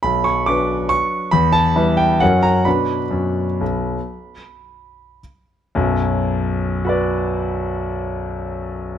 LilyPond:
<<
  \new Staff \with { instrumentName = "Grand piano" } { \time 3/4 \key b \minor \tempo 4 = 116 b''8 cis'''8 d'''4 cis'''4 | b''8 a''4 g''8 fis''8 ais''8 | b''2.~ | b''2 r4 |
r2 <fis' b' d''>4~ | <fis' b' d''>2. | }
  \new Staff \with { instrumentName = "Grand piano" } { \clef bass \time 3/4 \key b \minor b,,4 <fis d' b'>2 | e,4 <g e' b'>4 <fis, fis cis' ais'>4 | <b, d' b'>4 fis,4 b,,4 | r2. |
<b,, fis,>2.~ | <b,, fis,>2. | }
>>